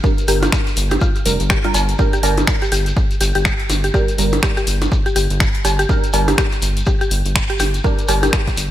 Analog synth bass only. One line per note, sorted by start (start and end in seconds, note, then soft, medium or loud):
0.28 0.48 G1 loud
0.77 0.97 G1 medium
1.26 1.37 F1 medium
1.40 1.58 G1 medium
1.74 1.94 G1 loud
2.23 2.43 G1 loud
2.72 2.92 G1 medium
3.21 3.32 G1 loud
3.35 3.53 G1 medium
3.70 3.90 G1 medium
4.18 4.38 G1 loud
4.67 4.87 G1 medium
5.16 5.27 G1 medium
5.30 5.48 G1 medium
5.65 5.85 G1 medium
6.13 6.33 G1 loud
6.62 6.82 G1 medium
7.11 7.22 G1 loud
7.25 7.44 G1 medium
7.60 7.80 G1 medium
8.09 8.29 G1 loud
8.57 8.71 G1 medium